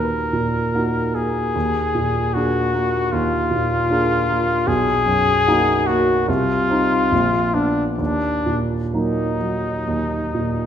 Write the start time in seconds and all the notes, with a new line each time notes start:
Already playing: D#2 A#2 A#3 D#4 F#4 A#4
0.33 A#2
0.74 A#3 D#4 F#4
1.15 A#3 G#4
1.55 D#2
1.95 A#2
2.34 A#3 D4 F#4 G#4
2.74 A#3
3.12 D#2 F4
3.51 A#2
3.90 A#3 D4 G#4
4.28 A#3
4.67 B1 G#4
5.06 F#2
5.47 A#3 D#4 F#4
5.86 A#3 F#4
6.28 C2 F4
6.70 C4 D#4
7.12 A#1
7.54 B3 D4
7.98 D#2 D4
8.46 A#2
8.93 F#3 A#3 D#4
9.40 F#3
9.87 D#2
10.34 A#2